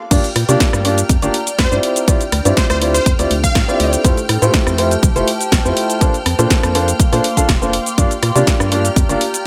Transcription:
0.11 fm bass G2, upright piano A#3 D4 F4 G4 D5, ambient pad G4, string machine G5 F6, kick, closed hi-hat, crash, shaker
0.24 closed hi-hat, shaker
0.36 fm bass A#2, cross-stick, open hi-hat
0.48 fm bass C3, upright piano A#3 D4 F4 G4 D5, closed hi-hat, shaker
0.60 kick, snare, closed hi-hat, shaker
0.73 fm bass G2, ambient pad D5, cross-stick, shaker
0.85 upright piano A#3 D4 F4 G4 D5, ambient pad A#5, open hi-hat
0.98 closed hi-hat, shaker
1.09 fm bass F2, kick, closed hi-hat, shaker
1.22 fm bass G1, upright piano A#3 D4 F4 G4 D5, closed hi-hat, shaker
1.34 open hi-hat
1.47 closed hi-hat, shaker
1.58 fm bass F2, digital synth lead C5, kick, snare, closed hi-hat, shaker
1.72 fm bass G2, upright piano C4 E4 F4 G4 D5, shaker
1.83 ambient pad D4, open hi-hat
1.96 closed hi-hat, shaker
2.08 upright piano C4 E4 F4 G4 D5, kick, closed hi-hat, shaker
2.21 closed hi-hat, shaker
2.32 fm bass D2, cross-stick, open hi-hat
2.45 fm bass G2, upright piano C4 E4 F4 G4 D5, closed hi-hat, shaker
2.53 ambient pad A4
2.57 digital synth lead C5, kick, snare, closed hi-hat, shaker
2.70 fm bass D2, digital synth lead C5, cross-stick, closed hi-hat, shaker
2.81 upright piano C4 E4 F4 G4 D5, open hi-hat
2.94 digital synth lead C5, closed hi-hat, shaker
3.06 fm bass F2, kick, closed hi-hat, shaker
3.19 fm bass D2, upright piano C4 E4 F4 G4 D5, open hi-hat, shaker
3.31 fm bass D2, open hi-hat
3.44 digital synth lead F5, kick, closed hi-hat, shaker
3.55 fm bass A2, kick, snare, closed hi-hat, shaker
3.68 upright piano C4 E4 F4 G4 D5, shaker
3.80 fm bass D2, open hi-hat
3.93 closed hi-hat, shaker
4.04 fm bass F2, upright piano A3 E4 F4 G4 C5, ambient pad G4, kick, closed hi-hat, shaker
4.17 closed hi-hat, shaker
4.29 fm bass A2, ambient pad A5, cross-stick, open hi-hat
4.42 fm bass A2, upright piano A3 E4 F4 G4 C5, closed hi-hat, shaker
4.48 ambient pad C5
4.54 kick, snare, closed hi-hat, shaker
4.67 fm bass F2, cross-stick, shaker
4.78 upright piano A3 E4 F4 G4 C5, open hi-hat
4.91 ambient pad G5, closed hi-hat, shaker
5.03 fm bass C2, kick, closed hi-hat, shaker
5.16 fm bass F1, upright piano A3 E4 F4 G4 C5, closed hi-hat, shaker
5.28 open hi-hat
5.41 closed hi-hat, shaker
5.52 fm bass C2, kick, snare, closed hi-hat, shaker
5.65 fm bass F2, upright piano A3 E4 F4 G4 C5, shaker
5.77 open hi-hat
5.90 closed hi-hat, shaker
6.01 upright piano A#3 D4 F4 A4 C5, ambient pad A#3, kick, closed hi-hat, shaker
6.14 closed hi-hat, shaker
6.26 fm bass F2, cross-stick, open hi-hat
6.39 fm bass A#2, upright piano A#3 D4 F4 A4 C5, closed hi-hat, shaker
6.49 ambient pad F5, kick, snare, closed hi-hat, shaker
6.63 fm bass F2, cross-stick, closed hi-hat, shaker
6.75 upright piano A#3 D4 F4 A4 C5, open hi-hat
6.80 ambient pad C6
6.88 ambient pad D6, closed hi-hat, shaker
7.00 kick, closed hi-hat, shaker
7.12 fm bass A#2, upright piano A#3 D4 F4 A4 C5, open hi-hat, shaker
7.24 open hi-hat
7.37 upright piano A#3 D4 F4 A4 F5, kick, closed hi-hat, shaker
7.49 fm bass F1, kick, snare, closed hi-hat, shaker
7.62 upright piano A#3 D4 F4 A4 C5, shaker
7.73 open hi-hat
7.86 closed hi-hat, shaker
7.98 fm bass G2, upright piano A#3 D4 F4 G4 D5, ambient pad G4, string machine G5 F6, kick, closed hi-hat, shaker
8.11 closed hi-hat, shaker
8.16 ambient pad D5
8.23 fm bass A#2, cross-stick, open hi-hat
8.35 fm bass C3, upright piano A#3 D4 F4 G4 D5, closed hi-hat, shaker
8.47 kick, snare, closed hi-hat, shaker
8.60 fm bass G2, cross-stick, shaker
8.72 upright piano A#3 D4 F4 G4 D5, ambient pad A#5, open hi-hat
8.85 closed hi-hat, shaker
8.96 fm bass F2, kick, closed hi-hat, shaker
9.09 fm bass G1, upright piano A#3 D4 F4 G4 D5, closed hi-hat, shaker
9.21 open hi-hat
9.34 closed hi-hat, shaker

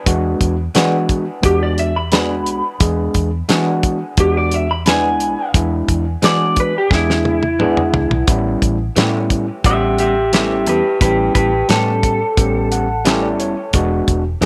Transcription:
0.06 fingered electric bass E2, tine electric piano G#3 B3 D4 F#4, kick, closed hi-hat
0.41 fingered electric bass E2, kick, closed hi-hat
0.75 clean electric guitar E3 B3 D4 G#4, fingered electric bass E3, tine electric piano G#3 B3 D4 F#4, snare, closed hi-hat
1.09 kick, closed hi-hat
1.42 fingered electric bass E2, tine electric piano G#3 B3 D4 F#4, clean electric guitar G4, kick, closed hi-hat
1.63 clean electric guitar D5
1.78 clean electric guitar E5, closed hi-hat
1.96 clean electric guitar B5
2.12 clean electric guitar E3 B3 D4 G#4 B5, tine electric piano G#3 B3 D4 F#4, snare, closed hi-hat
2.46 fingered electric bass B1, closed hi-hat
2.80 fingered electric bass E2, tine electric piano G#3 B3 D4 G#4, kick, closed hi-hat
3.14 fingered electric bass E2, kick, closed hi-hat
3.49 clean electric guitar E3 B3 D4 G#4, fingered electric bass E3, tine electric piano G#3 B3 D4 F#4, snare, closed hi-hat
3.83 kick, closed hi-hat
4.17 fingered electric bass E2, tine electric piano G#3 B3 D4 F#4, clean electric guitar G4, kick, closed hi-hat
4.37 clean electric guitar D5
4.51 clean electric guitar E5, closed hi-hat
4.71 clean electric guitar B5
4.86 clean electric guitar E3 B3 D4 G#4 G#5, tine electric piano G#3 B3 D4 E4, snare, closed hi-hat
5.20 fingered electric bass B1, closed hi-hat
5.54 fingered electric bass E2, tine electric piano G#3 B3 D4 E4, kick, closed hi-hat
5.88 fingered electric bass E2, kick, closed hi-hat
6.22 clean electric guitar E3 B3 D4 G#4 D5, fingered electric bass E3, tine electric piano G#3 B3 D4 F#4, snare, closed hi-hat
6.56 clean electric guitar B4, kick, closed hi-hat
6.78 clean electric guitar G4
6.91 fingered electric bass E2, tine electric piano G#3 B3 D4 G#4, clean electric guitar E4, kick, snare
7.10 snare
7.25 high tom
7.43 high tom
7.59 clean electric guitar E3 B3 D4 G#4, tine electric piano G#3 B3 D4 G#4, mid tom
7.77 mid tom
7.93 fingered electric bass C#2, floor tom
8.10 fingered electric bass B1, floor tom
8.27 fingered electric bass A1, tine electric piano G3 B3 C#4 E4, kick, closed hi-hat
8.62 fingered electric bass A1, kick, closed hi-hat
8.96 fingered electric bass A2, clean electric guitar E3 A3 C#4 G4, tine electric piano G3 B3 C#4 E4, snare, closed hi-hat
9.30 kick, closed hi-hat
9.64 fingered electric bass A1, tine electric piano G3 B3 C#4 F#5, clean electric guitar G4 E5, kick, closed hi-hat
9.98 clean electric guitar G4 E5, closed hi-hat
10.33 clean electric guitar E3 A3 C#4 G4 E5, tine electric piano G3 B3 C#4 E4, snare, closed hi-hat
10.67 fingered electric bass E2, clean electric guitar G4 B4, closed hi-hat
11.01 fingered electric bass A1, tine electric piano G3 B3 C#4 E4, clean electric guitar G4 B4, kick, closed hi-hat
11.35 fingered electric bass A1, clean electric guitar G4 B4, kick, closed hi-hat
11.69 fingered electric bass A2, clean electric guitar E3 A3 C#4 G4 A4, tine electric piano G3 B3 C#4 G4, snare, closed hi-hat
12.03 kick, closed hi-hat
12.37 fingered electric bass A1, tine electric piano G3 B3 C#4 G4, kick, closed hi-hat
12.72 tine electric piano F#5, closed hi-hat
13.05 clean electric guitar E3 A3 C#4 G4, tine electric piano G3 B3 C#4 E4 E5, snare, closed hi-hat
13.23 tine electric piano D5
13.39 fingered electric bass F1, tine electric piano C#5, closed hi-hat
13.73 fingered electric bass E1, tine electric piano G#3 B3 D4 F#4, kick, closed hi-hat
14.08 fingered electric bass E1, kick, closed hi-hat
14.41 fingered electric bass E2, clean electric guitar E3, tine electric piano G#3 B3 D4 G#4, closed hi-hat

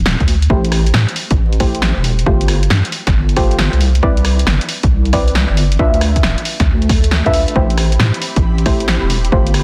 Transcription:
Already playing: wobble bass D1
0.06 snare
0.20 wobble bass D2, kick, closed hi-hat
0.28 open hi-hat
0.42 closed hi-hat
0.50 wobble bass A1, synth stab A3 E4 G4 C5, kick
0.65 closed hi-hat
0.72 cross-stick, open hi-hat
0.86 closed hi-hat
0.94 wobble bass A2, snare
1.09 closed hi-hat
1.16 open hi-hat
1.31 wobble bass A1, kick, closed hi-hat
1.53 closed hi-hat
1.60 synth stab A3 E4 G4 C5, kick, cross-stick, open hi-hat
1.75 closed hi-hat
1.82 snare
1.97 wobble bass E1
2.04 open hi-hat
2.19 closed hi-hat
2.26 wobble bass G1, synth stab A3 F4 G4 C5, kick
2.41 closed hi-hat
2.48 cross-stick, open hi-hat
2.63 closed hi-hat
2.70 wobble bass G2, snare
2.85 closed hi-hat
2.92 open hi-hat
3.07 wobble bass G1, kick, snare, closed hi-hat
3.29 closed hi-hat
3.37 synth stab A3 F4 G4 C5, kick, cross-stick, open hi-hat
3.51 closed hi-hat
3.59 snare
3.73 wobble bass C2, closed hi-hat
3.81 open hi-hat
3.95 closed hi-hat
4.02 wobble bass C2, synth stab C4 E4 B4 D5, kick
4.17 closed hi-hat
4.25 cross-stick, open hi-hat
4.39 closed hi-hat
4.47 wobble bass G1, snare
4.61 closed hi-hat
4.69 open hi-hat
4.83 wobble bass C2, kick, closed hi-hat
5.05 closed hi-hat
5.13 synth stab C4 E4 B4 D5, kick, cross-stick, open hi-hat
5.28 closed hi-hat
5.35 snare
5.49 wobble bass G1
5.57 open hi-hat
5.72 closed hi-hat
5.79 wobble bass D2, synth stab D4 F4 B4 E5, kick
5.94 closed hi-hat
6.01 cross-stick, open hi-hat
6.16 kick, closed hi-hat
6.23 wobble bass D1, snare
6.38 closed hi-hat
6.45 open hi-hat
6.60 wobble bass D2, kick, snare, closed hi-hat
6.67 swell
6.82 closed hi-hat
6.89 kick, cross-stick, open hi-hat
7.04 closed hi-hat
7.11 snare
7.26 wobble bass G2, synth stab D4 F4 B4 E5, kick, closed hi-hat
7.33 wobble bass D2, open hi-hat
7.48 closed hi-hat
7.55 wobble bass A1, synth stab A3 E4 G4 C5, ambient pad C4 E4 G4 B5, kick
7.70 closed hi-hat
7.78 cross-stick, open hi-hat
7.92 closed hi-hat
7.99 wobble bass A2, snare
8.14 closed hi-hat
8.22 open hi-hat
8.36 wobble bass A1, kick, closed hi-hat
8.58 closed hi-hat
8.66 synth stab A3 E4 G4 C5, kick, cross-stick, open hi-hat
8.80 closed hi-hat
8.88 snare
9.02 wobble bass E1
9.10 open hi-hat
9.25 closed hi-hat
9.32 wobble bass G1, synth stab A3 F4 G4 C5, ambient pad D4 F4 A4 C5, kick
9.47 closed hi-hat
9.54 cross-stick, open hi-hat

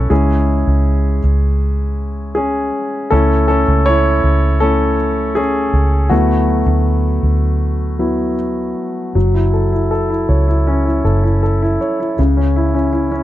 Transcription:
Already playing: grand piano C#4 E4 A4 C#5
0.10 fingered electric bass C#2, grand piano G#3 C#4 E4 G#4
0.67 fingered electric bass C#2
1.24 fingered electric bass C#2
2.35 grand piano C#4 G#4
3.10 fingered electric bass C#2, grand piano A3 C#4 E4 A4
3.48 grand piano C#4 A4
3.68 fingered electric bass C#2
3.86 grand piano E4 C#5
4.24 fingered electric bass C#2
4.60 grand piano A3 C#4 E4 A4
5.35 grand piano C#4 G#4
5.73 fingered electric bass C#2
6.09 fingered electric bass D2, grand piano F#3 A3 B3 E4 F#4
6.66 fingered electric bass D2
7.23 fingered electric bass D2
7.99 grand piano F#3 B3 E4
9.15 fingered electric bass F#1, grand piano F#3
9.34 grand piano E4
9.54 grand piano A4
9.72 grand piano E4
9.91 grand piano A4
10.10 grand piano E4
10.29 fingered electric bass C#2, grand piano C#5
10.48 grand piano E4
10.67 grand piano C#4
10.86 grand piano E4
11.04 fingered electric bass F#1, grand piano A4
11.24 grand piano E4
11.43 grand piano A4
11.62 grand piano E4
11.81 grand piano C#5
12.00 grand piano E4
12.19 fingered electric bass C#2, grand piano C#3
12.37 grand piano C#4
12.56 grand piano E4
12.74 grand piano C#4
12.93 grand piano E4
13.11 grand piano C#4

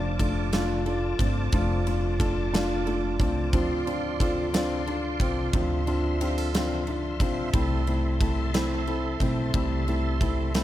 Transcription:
Already playing: upright bass F1, steel-string acoustic guitar F3 D4 A4, felt piano A3 D4 F4, tonewheel organ F4 D5 A5
0.19 felt piano A3 D4 F4, steel-string acoustic guitar A4, kick, ride
0.53 felt piano A3 D4 F4, steel-string acoustic guitar D4, snare, ride
0.86 felt piano D4 F4, steel-string acoustic guitar A4, ride
1.19 upright bass G1, felt piano A3 D4 F4, steel-string acoustic guitar C4, kick, ride
1.52 upright bass F1, steel-string acoustic guitar F3, felt piano A3 D4 F4, kick, ride
1.86 felt piano A3 D4 F4, steel-string acoustic guitar D4, ride
2.20 felt piano A3 D4 F4, steel-string acoustic guitar A4, kick, ride
2.53 felt piano A3 D4 F4, steel-string acoustic guitar D4, snare, ride
2.86 felt piano A3 D4 F4, steel-string acoustic guitar A4, ride
3.19 upright bass C2, felt piano A3 D4 F4, steel-string acoustic guitar C4, kick, ride
3.53 upright bass D2, steel-string acoustic guitar F3, felt piano C4 D4 F4, tonewheel organ C6, kick, ride
3.86 felt piano C4 D4 F4, steel-string acoustic guitar D4, ride
4.19 felt piano C4 D4 F4, steel-string acoustic guitar A4, kick, ride
4.53 felt piano C4 D4 F4, steel-string acoustic guitar D4, snare, ride
4.86 felt piano D4 F4, steel-string acoustic guitar A4, ride
5.20 upright bass C2, steel-string acoustic guitar C4, felt piano C4 D4 F4, kick, ride
5.53 upright bass D2, steel-string acoustic guitar F3, felt piano C4 D4 F4, tonewheel organ E5, kick, ride
5.87 felt piano C4 D4 F4, steel-string acoustic guitar D4, ride
6.21 felt piano C4 D4 F4, steel-string acoustic guitar G4, ride
6.38 steel-string acoustic guitar A4
6.54 felt piano C4 D4 F4, steel-string acoustic guitar D4, snare, ride
6.87 felt piano D4 F4, steel-string acoustic guitar A4, ride
7.20 upright bass B1, steel-string acoustic guitar C4, felt piano C4 D4 F4, kick, ride
7.53 upright bass C2, steel-string acoustic guitar G3, felt piano A3 C4 E4, tonewheel organ A4 C6, kick, ride
7.87 felt piano A3 C4 E4, steel-string acoustic guitar E4, ride
8.21 felt piano A3 C4 E4, steel-string acoustic guitar A4, kick, ride
8.54 felt piano A3 C4 E4, steel-string acoustic guitar E4, snare, ride
8.87 felt piano C4 E4, steel-string acoustic guitar A4, ride
9.20 upright bass B1, felt piano A3 C4 E4, steel-string acoustic guitar C4, kick, ride
9.54 upright bass C2, steel-string acoustic guitar G3, felt piano A3 C4 E4, kick, ride
9.88 felt piano A3 C4 E4, steel-string acoustic guitar E4, ride
10.21 felt piano A3 C4 E4, steel-string acoustic guitar A4, kick, ride
10.54 felt piano A3 C4 E4, steel-string acoustic guitar E4, snare, ride

